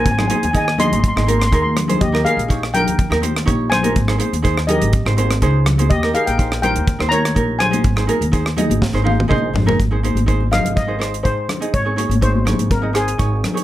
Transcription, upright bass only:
X:1
M:4/4
L:1/16
Q:1/4=123
K:Ab
V:1 name="Upright bass" clef=bass
A,,,2 z E,,4 A,,,2 A,,,3 E,,4 | E,,2 z B,,,4 E,,2 E,,3 B,,,4 | A,,,2 z E,,4 A,,,2 A,,,3 D,,4 | E,,2 z B,,,4 E,,2 E,,3 B,,,4 |
A,,,2 z E,,4 A,,,2 A,,,3 B,,,2 A,,,2 | A,,,3 A,,,4 A,,,4- A,,, A,,2 z2 | A,,,3 A,,,4 A,,,4- A,,, A,,,2 z2 |]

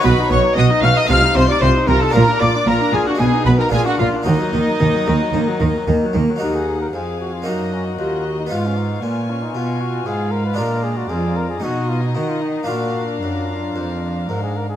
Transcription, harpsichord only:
X:1
M:4/4
L:1/8
Q:1/4=114
K:Ebm
V:1 name="Harpsichord"
[=B,^D^F]4 [=A,E=F]4 | [B,=DF]4 E2 [B,DF]2 | [B,EG]8 | [B,EG]4 [B,EG]4 |
[CEF]8 | [A,=DF]4 ^D4 | [B,=DF]8 |]
V:2 name="Harpsichord" clef=bass
=B,, B,, B,, B,, =C, C, C, C, | B,, B,, B,, B,, C, C, B,, B,, | E, E, E, E, E, E, E, E, | E,,2 F,,2 G,,2 E,,2 |
A,,2 B,,2 C,2 A,,2 | B,,2 F,,2 =B,,2 ^D,2 | B,,2 G,,2 F,,2 A,,2 |]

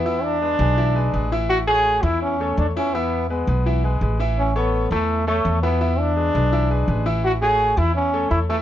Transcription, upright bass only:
X:1
M:4/4
L:1/8
Q:1/4=167
K:A
V:1 name="Upright bass" clef=bass
E,,3 B,,,3 A,,,2- | A,,,3 E,,3 E,,2- | E,,3 B,,,3 A,,,2- | A,,,3 E,,3 E,,2- |
E,,3 B,,,3 A,,,2- | A,,,3 E,,3 E,,2 |]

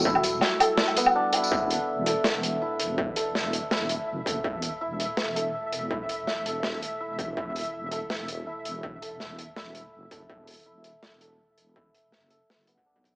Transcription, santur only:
X:1
M:4/4
L:1/8
Q:"Swing 16ths" 1/4=164
K:Em
V:1 name="Santur"
E z2 A2 B, D E | E z2 A3 E z | z A3 E z2 A- | A2 E z2 A3 |
E z2 A3 E z | E z2 A3 E z | z A3 E z2 A- | A2 E z2 A3 |
E z2 A2 B, D E |]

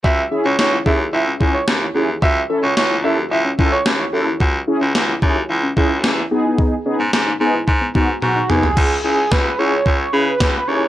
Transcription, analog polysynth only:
X:1
M:4/4
L:1/8
Q:1/4=110
K:C#m
V:1 name="Analog polysynth"
z [CEG] z [CEG] z [CEG] z [CEG] | z [CEA] z [CEA] z [CEA] z [CEA] | z [CEG] z [CEG] z [CEG] z [B,DG]- | [B,DG] [B,DG] z [B,DG] z [B,DF] z [B,DG] |
z [CEG] z [CEG] z [CEG] z [CEG] |]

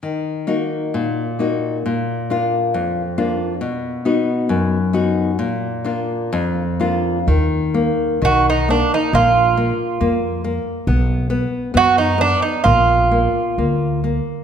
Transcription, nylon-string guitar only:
X:1
M:2/4
L:1/8
Q:1/4=66
K:Ebm
V:1 name="Nylon-string guitar"
E, [B,EG] B,, [B,EG] | B,, [B,=DF] F,, [B,DF] | =B,, [=B,^D^F] ^F,, [B,DF] | B,, [B,=DF] F,, [B,DF] |
E, B, E, B, | B, B, B, B, | =B, B, B, B, | B, B, B, B, |]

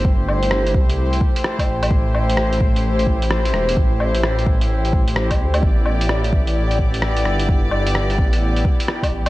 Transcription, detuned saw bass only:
X:1
M:4/4
L:1/8
Q:"Swing 16ths" 1/4=129
K:Am
V:1 name="Detuned saw bass" clef=bass
G,,,3 C,,2 z2 A,,,- | A,,, A,,,6 E,,, | A,,,6- A,,, D,, | A,,,6- A,,, G,,,- |
G,,,3 A,,,2 z2 A,,, |]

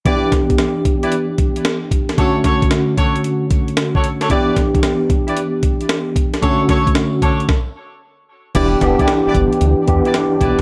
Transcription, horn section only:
X:1
M:4/4
L:1/16
Q:"Swing 16ths" 1/4=113
K:Edor
V:1 name="Horn section"
[EGBd]2 z4 z [EGBd] z8 | [DFAc] z [DFAc] z3 [DFAc] z6 [DFAc] z [DFAc] | [EGBd]2 z4 z [EGBd] z8 | [DFAc] z [DFAc] z3 [DFAc] z8 z |
[EGBd] z2 [EGBd] z [EGBd] z4 z [EGBd] z2 [EGBd] z |]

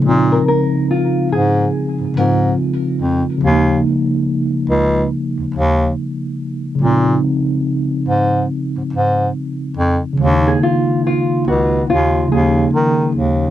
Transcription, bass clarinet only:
X:1
M:4/4
L:1/16
Q:"Swing 16ths" 1/4=71
K:Bbm
V:1 name="Bass clarinet" clef=bass
B,,2 z4 A,,2 z A,, A,,2 z2 F,, z | E,,2 z4 D,,2 z E,, E,,2 z4 | B,,2 z4 A,,2 z A,, A,,2 z2 F,, z | E,,2 z4 D,,2 E,,2 E,,2 E,2 E,,2 |]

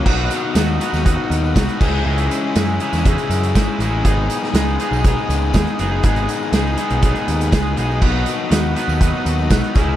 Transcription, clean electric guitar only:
X:1
M:4/4
L:1/8
Q:1/4=121
K:B
V:1 name="Clean electric guitar" clef=bass
[B,,F,B,DF]2 [B,,F,B,DF] [B,,F,B,DF] [B,,F,B,DF]2 [B,,F,B,DF] [C,E,G,DE] | [C,E,G,DE]2 [C,E,G,DE] [C,E,G,DE] [C,E,G,DE]2 [C,E,G,DE] [C,E,G,DE] | [G,,D,G,B,DG]2 [G,,D,G,B,DG] [G,,D,G,B,DG] [G,,D,G,B,DG]2 [G,,D,G,B,DG] [G,,D,G,B,DG] | [G,,D,G,B,DG]2 [G,,D,G,B,DG] [G,,D,G,B,DG] [G,,D,G,B,DG]2 [G,,D,G,B,DG] [G,,D,G,B,DG] |
[B,,D,F,B,DB]2 [B,,D,F,B,DB] [B,,D,F,B,DB] [B,,D,F,B,DB]2 [B,,D,F,B,DB] [C,G,CDE] |]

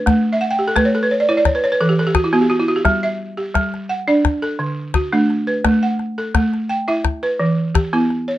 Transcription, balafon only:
X:1
M:4/4
L:1/16
Q:1/4=86
K:Amix
V:1 name="Balafon"
B z/2 e/2 f/2 g/2 G/2 A/2 B/2 c/2 A/2 B/2 c/2 d/2 c/2 d/2 c/2 B/2 c/2 B/2 A/2 G/2 A/2 G/2 F/2 E/2 F/2 G/2 F/2 E/2 F/2 G/2- | G/2 z/2 e2 G3 f d2 A3 F D2 B- | B f2 A3 g e2 B3 G E2 c |]
V:2 name="Balafon"
A,2 z2 A,2 z E z2 E,2 z B,2 z | G,2 z2 G,2 z D z2 D,2 z A,2 z | A,2 z2 A,2 z E z2 E,2 z B,2 z |]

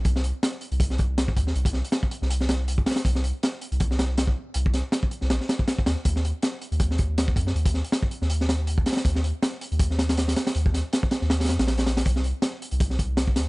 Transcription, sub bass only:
X:1
M:4/4
L:1/16
Q:"Swing 16ths" 1/4=160
K:Cm
V:1 name="Sub bass" clef=bass
C,,3 z4 C,,6- C,, E,,2 | C,,3 z4 C,,6- C,, z2 | C,,3 z4 C,,6- C,, z2 | C,,3 z4 C,, B,,, z4 z E,, z |
E,,3 z4 E,,6- E,, _G,,2 | E,,3 z4 E,,6- E,, z2 | E,,3 z4 E,,6- E,, z2 | E,,3 z4 E,,3 F,, B,,,4- B,,, |
C,,3 z4 C,,6- C,, E,,2 |]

